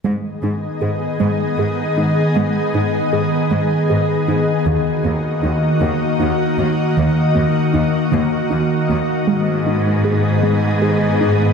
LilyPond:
<<
  \new Staff \with { instrumentName = "Synth pluck" } { \time 6/8 \key aes \dorian \tempo 4. = 52 aes8 ees'8 aes'8 aes8 aes'8 ees'8 | aes8 ees'8 aes'8 aes8 aes'8 ees'8 | ees8 bes8 ees'8 ees8 ees'8 bes8 | ees8 bes8 ees'8 ees8 ees'8 bes8 |
aes8 ees'8 aes'8 aes8 aes'8 ees'8 | }
  \new Staff \with { instrumentName = "Ambient pad" } { \time 6/8 \key aes \dorian <ees ces' aes' ees''>2.~ | <ees ces' aes' ees''>2. | <ees bes ges' ees''>2.~ | <ees bes ges' ees''>2. |
<ees ces' aes' ees''>2. | }
  \new Staff \with { instrumentName = "Cello section" } { \clef bass \time 6/8 \key aes \dorian aes,8 aes,8 aes,8 aes,8 aes,8 aes,8 | aes,8 aes,8 aes,8 aes,8 aes,8 aes,8 | ees,8 ees,8 ees,8 ees,8 ees,8 ees,8 | ees,8 ees,8 ees,8 ees,8 ees,8 ees,8 |
aes,2. | }
>>